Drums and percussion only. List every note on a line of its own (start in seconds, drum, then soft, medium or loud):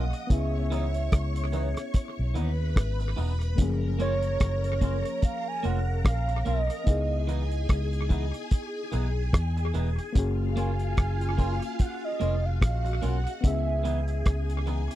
0.13 closed hi-hat medium
0.30 kick loud
0.30 closed hi-hat medium
0.72 closed hi-hat medium
0.94 closed hi-hat medium
1.12 kick loud
1.12 cross-stick loud
1.12 closed hi-hat medium
1.36 closed hi-hat medium
1.53 closed hi-hat medium
1.77 cross-stick medium
1.77 closed hi-hat medium
1.94 kick loud
1.94 closed hi-hat loud
2.35 closed hi-hat medium
2.76 kick loud
2.76 cross-stick loud
2.76 closed hi-hat loud
3.00 closed hi-hat soft
3.17 open hi-hat medium
3.41 closed hi-hat medium
3.58 kick loud
3.58 closed hi-hat loud
4.00 closed hi-hat medium
4.23 closed hi-hat medium
4.40 kick loud
4.40 cross-stick loud
4.40 closed hi-hat medium
4.64 closed hi-hat medium
4.81 kick medium
4.81 closed hi-hat medium
5.05 closed hi-hat medium
5.22 kick loud
5.22 closed hi-hat medium
5.64 closed hi-hat medium
6.05 kick loud
6.05 cross-stick loud
6.05 closed hi-hat loud
6.29 closed hi-hat soft
6.46 closed hi-hat medium
6.70 closed hi-hat medium
6.87 kick loud
6.87 closed hi-hat medium
7.29 closed hi-hat medium
7.51 closed hi-hat soft
7.69 kick loud
7.69 cross-stick loud
7.69 closed hi-hat loud
7.93 closed hi-hat medium
8.10 kick medium
8.10 closed hi-hat medium
8.34 closed hi-hat medium
8.51 kick loud
8.51 closed hi-hat medium
8.92 closed hi-hat medium
9.33 kick loud
9.33 cross-stick loud
9.33 closed hi-hat loud
9.57 closed hi-hat soft
9.74 closed hi-hat medium
9.98 closed hi-hat medium
10.15 kick loud
10.15 closed hi-hat loud
10.57 closed hi-hat medium
10.79 closed hi-hat medium
10.97 kick loud
10.97 cross-stick loud
10.97 closed hi-hat medium
11.21 closed hi-hat medium
11.38 kick medium
11.38 closed hi-hat medium
11.62 closed hi-hat medium
11.79 kick loud
11.79 closed hi-hat loud
12.21 closed hi-hat medium
12.62 kick loud
12.62 cross-stick loud
12.62 closed hi-hat medium
12.86 closed hi-hat soft
13.02 closed hi-hat medium
13.27 closed hi-hat medium
13.44 kick loud
13.44 closed hi-hat loud
13.85 closed hi-hat medium
14.08 closed hi-hat soft
14.26 kick loud
14.26 cross-stick loud
14.26 closed hi-hat medium
14.50 closed hi-hat medium
14.67 closed hi-hat medium
14.91 closed hi-hat medium